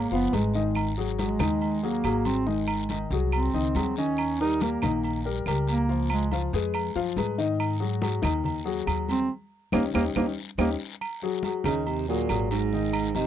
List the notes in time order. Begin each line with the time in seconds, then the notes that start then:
0.11 F#1 F3 B3 F4 F5, high conga
0.32 G#1 G#3 G#4 B4, high conga, low agogo, short guiro
0.54 D#3 D#4 D#5, high conga, short guiro
0.75 high conga, low agogo, long guiro, claves
0.97 F#3 F#4 G#4, high conga
1.19 F#3 G#3 F#4 G#4, high conga, low agogo, short guiro
1.39 D#2 D#3 D#4 D#5, high conga, low conga, low agogo, short guiro, claves
1.61 high conga, low agogo, long guiro
1.83 F#3 A#3 F#4 G#4, high conga
2.04 G#1 F#3 F#4 G#4, high conga, low agogo, short guiro, claves
2.25 C4, high conga, low agogo, short guiro
2.46 D#3 G#3 D#4 D#5, high conga, long guiro
2.68 high conga, low agogo, claves
2.89 D#3 D#4 D#5, high conga, low agogo, short guiro
3.11 C2 F#3 F#4 G#4, high conga, short guiro
3.32 C4, high conga, low agogo, long guiro, claves
3.54 C#2 D#3 D#4 D#5, high conga
3.75 D#2 F#3 F#4 G#4, high conga, low agogo, short guiro
3.96 D#3 C#4 D#4 D#5, high conga, short guiro
4.17 high conga, low agogo, long guiro, claves
4.41 G3 D#4 G4 A#4, high conga
4.60 G3 A#3 G4 A#4, high conga, low agogo, short guiro
4.82 A#1 D#3 D#4 D#5, high conga, low conga, low agogo, short guiro, claves
5.04 high conga, low agogo, long guiro
5.25 G3 G4 A#4, high conga
5.46 C#2 G3 G4 A#4, high conga, low agogo, short guiro, claves
5.67 A#3, low agogo, short guiro
5.89 F3 F4 F5, high conga, long guiro
6.10 G#3, high conga, low agogo, claves
6.31 F3 F4 F5, high conga, low agogo, short guiro
6.53 F2 G#3 G#4 B4, high conga, short guiro
6.74 high conga, low agogo, long guiro, claves
6.95 F#2 F3 F4 F5, high conga
7.16 G#2 G#3 G#4 B4, high conga, low agogo, short guiro
7.38 D#3 D#4 D#5, high conga, short guiro
7.59 high conga, low agogo, long guiro, claves
7.80 F#3 F#4 G#4, high conga
8.01 F#3 F#4 G#4, high conga, low agogo, short guiro
8.22 D#2 D#3 D#4 D#5, high conga, low conga, low agogo, short guiro, claves
8.44 high conga, low conga, low agogo, long guiro
8.65 F#3 F#4 G#4, high conga
8.86 D#2 F#3 F#4 G#4, high conga, low agogo, short guiro, claves
9.09 C4, high conga, low agogo, short guiro
9.72 D#2 A#3 C#4 D#4 G4, high conga, high timbale, long guiro, claves
9.94 D#2 A#3 C#4 D#4 G4, high conga, high timbale, long guiro, claves
10.16 D#2 A#3 C#4 D#4 G4, high conga, high timbale, long guiro, claves
10.58 D#2 A#3 C#4 D#4 G4, high conga, high timbale, long guiro, claves
11.01 high conga, low agogo, long guiro, claves
11.22 F#3 F#4 G#4, high conga
11.43 F#3 F#4 G#4, high conga, low agogo, short guiro
11.64 D#2 C#3 D#3 D#4 D#5, high conga, low conga, low agogo, short guiro, claves
11.87 C3, high conga, low agogo, long guiro
12.07 A#2 F#3 F#4 G#4, high conga
12.29 G#1 F#3 F#4 G#4, high conga, low agogo, short guiro, claves
12.51 G#2, low agogo, short guiro
12.72 D#3 D#4 D#5, high conga, long guiro
12.93 high conga, low agogo, claves
13.15 C3 D#3 D#4 D#5, high conga, low agogo, short guiro